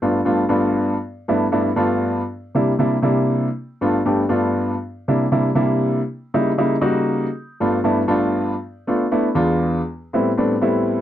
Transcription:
0.02 G2 A3 B3 D4 F4
0.25 G2 A3 B3 D4 F4
0.49 G2 A3 B3 D4 F4
1.28 G2 A3 B3 D4 E4
1.52 G2 A3 B3 D4 E4
1.76 G2 A3 B3 D4 F4
2.55 C3 G3 A#3 D4 E4
2.79 C3 G3 A#3 D4 E4
3.02 C3 G3 A#3 D4 E4
3.81 G2 A3 B3 D4 F4
4.05 G2 A3 B3 D4 G4
4.29 G2 A3 B3 D4 F4
5.08 C3 G3 A#3 D4 E4
5.31 C3 G3 A#3 D4 E4
5.55 C3 G3 A#3 D4 E4
6.34 C#3 G3 A#3 D#4 E4
6.58 C#3 G3 A#3 D#4 E4
6.81 C#3 G3 A#3 D#4 F#4
7.60 G2 A3 B3 D4 F4
7.84 G2 A3 B3 D4 E4
8.08 G2 A3 B3 D4 F4
8.87 A3 B3 D4 F4
9.11 A3 B3 D4 E4
9.35 E2 G#3 B3 D4 F4
10.13 A2 G3 B3 C4 E4
10.38 A2 G3 B3 C4 D4
10.61 A2 G3 B3 C4 E4

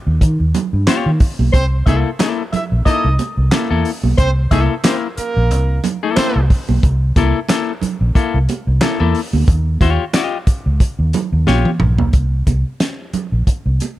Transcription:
0.07 D#2
0.21 D#3, kick, closed hi-hat
0.40 D#2
0.55 closed hi-hat, muted conga, low conga
0.73 G2
0.87 F4 G4 C#5, snare, clap, closed hi-hat, high conga
1.06 D#3
1.20 kick, open hi-hat
1.39 B1, high conga
1.53 C2 C4 C5, kick, closed hi-hat, muted conga
1.86 C2 A#3 E4 A4 E5, kick, closed hi-hat, muted conga
2.19 A#3 E4 A4, snare, clap, closed hi-hat, high conga
2.52 E4 E5, muted fingered electric bass stroke, closed hi-hat, low conga
2.72 A#1
2.85 A#3 D#4 E4 A4 D#5, kick, closed hi-hat
3.05 C2
3.19 closed hi-hat, muted conga
3.37 C2
3.52 A#3 E4 A4, snare, clap, closed hi-hat, high conga
3.71 E2 A#3 E4 A4
3.85 open hi-hat
4.03 B1, high conga
4.18 C2 C4 C5, kick, closed hi-hat
4.51 C2 A#3 E4 A4 E5, kick, closed hi-hat, muted conga
4.84 A#3 C4 E4 A#4 C5, snare, clap, closed hi-hat, high conga
5.17 A#3 A#4, muted fingered electric bass stroke, closed hi-hat
5.37 A#1
5.51 C2, closed hi-hat
5.84 closed hi-hat, muted conga, low conga
6.03 A#3 E4 A4
6.16 A#3 C4 E4 A4 C5, muted fingered electric bass stroke, snare, clap, closed hi-hat, high conga
6.36 C2
6.50 kick, open hi-hat
6.69 B1, high conga
6.83 C2, kick, closed hi-hat, muted conga
7.16 C2 A#3 E4 A4, kick, closed hi-hat, muted conga
7.49 A#3 E4 A4, snare, clap, closed hi-hat, high conga
7.82 muted fingered electric bass stroke, closed hi-hat, low conga
8.01 A#1
8.15 A#3 E4 A4, muted fingered electric bass stroke, kick, closed hi-hat
8.34 C2
8.49 closed hi-hat, muted conga
8.67 C2
8.81 A#3 E4 A4, snare, clap, closed hi-hat, high conga
9.00 E2 A#3 E4 A4
9.15 open hi-hat
9.33 D2, high conga
9.48 D#2, kick, closed hi-hat
9.81 D#2 F4 G4 C#5, kick, closed hi-hat, muted conga
10.13 F4 G4 D#5, snare, clap, closed hi-hat, high conga
10.47 muted fingered electric bass stroke, kick, closed hi-hat
10.66 C#2
10.80 kick, closed hi-hat
10.99 D#2
11.13 closed hi-hat, muted conga, low conga
11.32 D#2
11.47 A#1 F4 G4 C#5, snare, high conga
11.65 high tom
11.80 A#1, mid tom
11.98 B1, floor tom, high conga
12.13 C2, kick, closed hi-hat
12.47 C2, kick, closed hi-hat, muted conga
12.80 snare, closed hi-hat, high conga
13.13 muted fingered electric bass stroke, closed hi-hat, low conga
13.32 A#1
13.47 muted fingered electric bass stroke, kick, closed hi-hat
13.66 C2
13.80 closed hi-hat, muted conga

